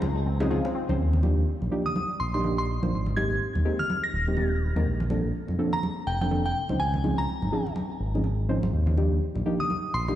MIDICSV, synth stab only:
0, 0, Header, 1, 2, 480
1, 0, Start_track
1, 0, Key_signature, -3, "major"
1, 0, Tempo, 483871
1, 981, Time_signature, 4, 2, 24, 8
1, 10072, End_track
2, 0, Start_track
2, 0, Title_t, "Synth stab"
2, 0, Program_c, 0, 62
2, 401, Note_on_c, 0, 53, 76
2, 402, Note_on_c, 0, 60, 68
2, 403, Note_on_c, 0, 61, 72
2, 405, Note_on_c, 0, 63, 68
2, 406, Note_on_c, 0, 68, 87
2, 476, Note_off_c, 0, 53, 0
2, 477, Note_off_c, 0, 60, 0
2, 478, Note_off_c, 0, 61, 0
2, 478, Note_off_c, 0, 63, 0
2, 479, Note_off_c, 0, 68, 0
2, 499, Note_on_c, 0, 53, 83
2, 500, Note_on_c, 0, 60, 74
2, 501, Note_on_c, 0, 61, 75
2, 502, Note_on_c, 0, 63, 75
2, 503, Note_on_c, 0, 68, 87
2, 615, Note_off_c, 0, 53, 0
2, 615, Note_off_c, 0, 60, 0
2, 616, Note_off_c, 0, 61, 0
2, 617, Note_off_c, 0, 63, 0
2, 617, Note_off_c, 0, 68, 0
2, 881, Note_on_c, 0, 53, 78
2, 883, Note_on_c, 0, 60, 74
2, 884, Note_on_c, 0, 61, 72
2, 885, Note_on_c, 0, 63, 72
2, 886, Note_on_c, 0, 72, 85
2, 961, Note_off_c, 0, 53, 0
2, 962, Note_off_c, 0, 60, 0
2, 962, Note_off_c, 0, 61, 0
2, 963, Note_off_c, 0, 63, 0
2, 963, Note_off_c, 0, 72, 0
2, 1219, Note_on_c, 0, 53, 75
2, 1220, Note_on_c, 0, 58, 70
2, 1220, Note_on_c, 0, 62, 68
2, 1222, Note_on_c, 0, 63, 68
2, 1223, Note_on_c, 0, 67, 83
2, 1391, Note_off_c, 0, 53, 0
2, 1391, Note_off_c, 0, 58, 0
2, 1392, Note_off_c, 0, 62, 0
2, 1392, Note_off_c, 0, 63, 0
2, 1393, Note_off_c, 0, 67, 0
2, 1698, Note_on_c, 0, 53, 91
2, 1699, Note_on_c, 0, 58, 82
2, 1701, Note_on_c, 0, 62, 83
2, 1701, Note_on_c, 0, 63, 85
2, 1702, Note_on_c, 0, 67, 100
2, 1814, Note_off_c, 0, 53, 0
2, 1815, Note_off_c, 0, 58, 0
2, 1816, Note_off_c, 0, 62, 0
2, 1816, Note_off_c, 0, 63, 0
2, 1817, Note_off_c, 0, 67, 0
2, 2320, Note_on_c, 0, 53, 73
2, 2321, Note_on_c, 0, 58, 64
2, 2323, Note_on_c, 0, 62, 64
2, 2324, Note_on_c, 0, 63, 65
2, 2325, Note_on_c, 0, 67, 83
2, 2396, Note_off_c, 0, 53, 0
2, 2397, Note_off_c, 0, 58, 0
2, 2397, Note_off_c, 0, 62, 0
2, 2398, Note_off_c, 0, 63, 0
2, 2398, Note_off_c, 0, 67, 0
2, 2419, Note_on_c, 0, 53, 77
2, 2420, Note_on_c, 0, 58, 70
2, 2421, Note_on_c, 0, 62, 70
2, 2422, Note_on_c, 0, 63, 73
2, 2423, Note_on_c, 0, 67, 85
2, 2535, Note_off_c, 0, 53, 0
2, 2535, Note_off_c, 0, 58, 0
2, 2536, Note_off_c, 0, 62, 0
2, 2536, Note_off_c, 0, 63, 0
2, 2537, Note_off_c, 0, 67, 0
2, 2801, Note_on_c, 0, 53, 77
2, 2802, Note_on_c, 0, 58, 69
2, 2803, Note_on_c, 0, 62, 67
2, 2804, Note_on_c, 0, 63, 67
2, 2806, Note_on_c, 0, 72, 79
2, 2881, Note_off_c, 0, 53, 0
2, 2881, Note_off_c, 0, 58, 0
2, 2882, Note_off_c, 0, 62, 0
2, 2882, Note_off_c, 0, 63, 0
2, 2883, Note_off_c, 0, 72, 0
2, 3138, Note_on_c, 0, 56, 77
2, 3139, Note_on_c, 0, 58, 68
2, 3140, Note_on_c, 0, 60, 69
2, 3141, Note_on_c, 0, 63, 69
2, 3143, Note_on_c, 0, 67, 85
2, 3310, Note_off_c, 0, 56, 0
2, 3311, Note_off_c, 0, 58, 0
2, 3312, Note_off_c, 0, 60, 0
2, 3312, Note_off_c, 0, 63, 0
2, 3313, Note_off_c, 0, 67, 0
2, 3619, Note_on_c, 0, 56, 92
2, 3620, Note_on_c, 0, 58, 85
2, 3621, Note_on_c, 0, 60, 86
2, 3622, Note_on_c, 0, 63, 86
2, 3623, Note_on_c, 0, 67, 101
2, 3735, Note_off_c, 0, 56, 0
2, 3735, Note_off_c, 0, 58, 0
2, 3736, Note_off_c, 0, 60, 0
2, 3737, Note_off_c, 0, 63, 0
2, 3737, Note_off_c, 0, 67, 0
2, 4241, Note_on_c, 0, 56, 74
2, 4242, Note_on_c, 0, 58, 66
2, 4243, Note_on_c, 0, 60, 66
2, 4244, Note_on_c, 0, 63, 66
2, 4245, Note_on_c, 0, 67, 78
2, 4316, Note_off_c, 0, 56, 0
2, 4317, Note_off_c, 0, 58, 0
2, 4317, Note_off_c, 0, 60, 0
2, 4318, Note_off_c, 0, 63, 0
2, 4319, Note_off_c, 0, 67, 0
2, 4339, Note_on_c, 0, 56, 78
2, 4340, Note_on_c, 0, 58, 69
2, 4341, Note_on_c, 0, 60, 73
2, 4342, Note_on_c, 0, 63, 72
2, 4344, Note_on_c, 0, 67, 85
2, 4455, Note_off_c, 0, 56, 0
2, 4456, Note_off_c, 0, 58, 0
2, 4456, Note_off_c, 0, 60, 0
2, 4457, Note_off_c, 0, 63, 0
2, 4457, Note_off_c, 0, 67, 0
2, 4721, Note_on_c, 0, 56, 78
2, 4722, Note_on_c, 0, 58, 69
2, 4723, Note_on_c, 0, 60, 70
2, 4724, Note_on_c, 0, 63, 67
2, 4725, Note_on_c, 0, 70, 84
2, 4801, Note_off_c, 0, 56, 0
2, 4801, Note_off_c, 0, 58, 0
2, 4802, Note_off_c, 0, 60, 0
2, 4803, Note_off_c, 0, 63, 0
2, 4803, Note_off_c, 0, 70, 0
2, 5059, Note_on_c, 0, 53, 75
2, 5060, Note_on_c, 0, 58, 69
2, 5061, Note_on_c, 0, 60, 68
2, 5062, Note_on_c, 0, 62, 68
2, 5064, Note_on_c, 0, 69, 82
2, 5231, Note_off_c, 0, 53, 0
2, 5231, Note_off_c, 0, 58, 0
2, 5232, Note_off_c, 0, 60, 0
2, 5233, Note_off_c, 0, 62, 0
2, 5233, Note_off_c, 0, 69, 0
2, 5539, Note_on_c, 0, 53, 89
2, 5540, Note_on_c, 0, 58, 86
2, 5541, Note_on_c, 0, 60, 82
2, 5542, Note_on_c, 0, 62, 84
2, 5543, Note_on_c, 0, 69, 103
2, 5655, Note_off_c, 0, 53, 0
2, 5655, Note_off_c, 0, 58, 0
2, 5656, Note_off_c, 0, 60, 0
2, 5656, Note_off_c, 0, 62, 0
2, 5657, Note_off_c, 0, 69, 0
2, 6162, Note_on_c, 0, 53, 74
2, 6163, Note_on_c, 0, 58, 66
2, 6164, Note_on_c, 0, 60, 67
2, 6165, Note_on_c, 0, 62, 68
2, 6166, Note_on_c, 0, 69, 82
2, 6237, Note_off_c, 0, 53, 0
2, 6237, Note_off_c, 0, 58, 0
2, 6238, Note_off_c, 0, 60, 0
2, 6238, Note_off_c, 0, 62, 0
2, 6239, Note_off_c, 0, 69, 0
2, 6258, Note_on_c, 0, 53, 81
2, 6260, Note_on_c, 0, 58, 72
2, 6261, Note_on_c, 0, 60, 70
2, 6262, Note_on_c, 0, 62, 72
2, 6263, Note_on_c, 0, 69, 87
2, 6374, Note_off_c, 0, 53, 0
2, 6375, Note_off_c, 0, 58, 0
2, 6376, Note_off_c, 0, 60, 0
2, 6376, Note_off_c, 0, 62, 0
2, 6377, Note_off_c, 0, 69, 0
2, 6641, Note_on_c, 0, 53, 72
2, 6642, Note_on_c, 0, 60, 69
2, 6643, Note_on_c, 0, 61, 68
2, 6645, Note_on_c, 0, 63, 68
2, 6646, Note_on_c, 0, 72, 81
2, 6721, Note_off_c, 0, 53, 0
2, 6721, Note_off_c, 0, 60, 0
2, 6722, Note_off_c, 0, 61, 0
2, 6723, Note_off_c, 0, 63, 0
2, 6723, Note_off_c, 0, 72, 0
2, 6979, Note_on_c, 0, 53, 75
2, 6980, Note_on_c, 0, 60, 68
2, 6981, Note_on_c, 0, 61, 70
2, 6982, Note_on_c, 0, 63, 68
2, 6983, Note_on_c, 0, 68, 84
2, 7151, Note_off_c, 0, 53, 0
2, 7151, Note_off_c, 0, 60, 0
2, 7152, Note_off_c, 0, 61, 0
2, 7152, Note_off_c, 0, 63, 0
2, 7153, Note_off_c, 0, 68, 0
2, 7459, Note_on_c, 0, 53, 93
2, 7460, Note_on_c, 0, 60, 85
2, 7461, Note_on_c, 0, 61, 81
2, 7462, Note_on_c, 0, 63, 84
2, 7463, Note_on_c, 0, 68, 104
2, 7575, Note_off_c, 0, 53, 0
2, 7575, Note_off_c, 0, 60, 0
2, 7576, Note_off_c, 0, 61, 0
2, 7576, Note_off_c, 0, 63, 0
2, 7577, Note_off_c, 0, 68, 0
2, 8081, Note_on_c, 0, 53, 73
2, 8082, Note_on_c, 0, 60, 62
2, 8083, Note_on_c, 0, 61, 66
2, 8085, Note_on_c, 0, 63, 67
2, 8086, Note_on_c, 0, 68, 74
2, 8161, Note_off_c, 0, 53, 0
2, 8162, Note_off_c, 0, 60, 0
2, 8162, Note_off_c, 0, 61, 0
2, 8163, Note_off_c, 0, 63, 0
2, 8163, Note_off_c, 0, 68, 0
2, 8418, Note_on_c, 0, 53, 84
2, 8419, Note_on_c, 0, 60, 73
2, 8420, Note_on_c, 0, 61, 78
2, 8421, Note_on_c, 0, 63, 77
2, 8423, Note_on_c, 0, 72, 96
2, 8534, Note_off_c, 0, 53, 0
2, 8535, Note_off_c, 0, 60, 0
2, 8536, Note_off_c, 0, 61, 0
2, 8536, Note_off_c, 0, 63, 0
2, 8537, Note_off_c, 0, 72, 0
2, 8899, Note_on_c, 0, 53, 75
2, 8900, Note_on_c, 0, 58, 69
2, 8901, Note_on_c, 0, 62, 67
2, 8902, Note_on_c, 0, 63, 70
2, 8903, Note_on_c, 0, 67, 83
2, 9071, Note_off_c, 0, 53, 0
2, 9071, Note_off_c, 0, 58, 0
2, 9072, Note_off_c, 0, 62, 0
2, 9072, Note_off_c, 0, 63, 0
2, 9073, Note_off_c, 0, 67, 0
2, 9378, Note_on_c, 0, 53, 91
2, 9379, Note_on_c, 0, 58, 83
2, 9380, Note_on_c, 0, 62, 83
2, 9381, Note_on_c, 0, 63, 84
2, 9382, Note_on_c, 0, 67, 103
2, 9495, Note_off_c, 0, 53, 0
2, 9495, Note_off_c, 0, 58, 0
2, 9496, Note_off_c, 0, 62, 0
2, 9496, Note_off_c, 0, 63, 0
2, 9497, Note_off_c, 0, 67, 0
2, 10000, Note_on_c, 0, 53, 73
2, 10002, Note_on_c, 0, 58, 66
2, 10003, Note_on_c, 0, 62, 67
2, 10004, Note_on_c, 0, 63, 64
2, 10005, Note_on_c, 0, 67, 83
2, 10072, Note_off_c, 0, 53, 0
2, 10072, Note_off_c, 0, 58, 0
2, 10072, Note_off_c, 0, 62, 0
2, 10072, Note_off_c, 0, 63, 0
2, 10072, Note_off_c, 0, 67, 0
2, 10072, End_track
0, 0, End_of_file